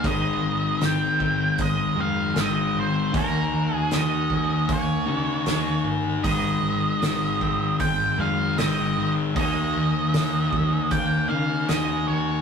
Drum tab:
HH |o-o-o-o-|o-o-o-o-|o-o-o-o-|o-o-o-o-|
SD |--o---o-|--o---o-|--o---o-|--o---o-|
BD |o--oo---|o--oo---|o--oo---|o--oo---|